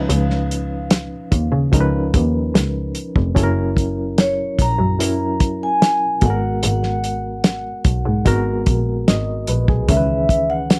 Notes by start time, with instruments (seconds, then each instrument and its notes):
Already playing: reed electric piano F3 C#4 D#4 B4, vibraphone F5
0.09 double bass C#2, closed hi-hat
0.30 snare
0.51 closed hi-hat
0.91 snare, closed hi-hat
1.32 double bass D#2, kick, closed hi-hat
1.52 double bass C#3
1.72 double bass C#2, reed electric piano F3 C#4 D#4 A#4, kick, closed hi-hat
1.81 reed electric piano B4
2.14 double bass D#2, kick, closed hi-hat
2.54 double bass C#2, snare, closed hi-hat
2.95 closed hi-hat
3.16 double bass F1, kick
3.35 double bass F#1, reed electric piano F#3 C#4 E4 A4, kick, closed hi-hat
3.43 reed electric piano A#4
3.77 kick, closed hi-hat
4.18 vibraphone C#5, snare, closed hi-hat
4.59 double bass A#1, vibraphone A#5, kick, closed hi-hat
4.78 double bass F#2
4.99 reed electric piano F#3 C#4 E4 A#4, closed hi-hat
5.40 kick, closed hi-hat
5.63 vibraphone G#5
5.82 snare, closed hi-hat
6.21 double bass G#1, reed electric piano G#3 B3 F#4 A4, kick, closed hi-hat
6.25 vibraphone F#5
6.30 reed electric piano A#4
6.63 double bass G#1, vibraphone F#5, closed hi-hat
6.83 snare
7.04 closed hi-hat
7.44 snare, closed hi-hat
7.85 double bass B1, kick, closed hi-hat
8.05 double bass G#2
8.25 double bass G#1, reed electric piano G#3 B3 F#4 A#4, kick, closed hi-hat
8.66 double bass A#1, kick, closed hi-hat
9.08 double bass G#1, reed electric piano D#5, snare, closed hi-hat
9.47 double bass A#1, reed electric piano B4, closed hi-hat
9.68 double bass B1, reed electric piano G#4, kick
9.88 double bass C#2, reed electric piano D#3 E3 C#4 A#4, vibraphone E5, kick, closed hi-hat
9.97 reed electric piano B4
10.29 kick, closed hi-hat
10.50 vibraphone F#5
10.70 snare, closed hi-hat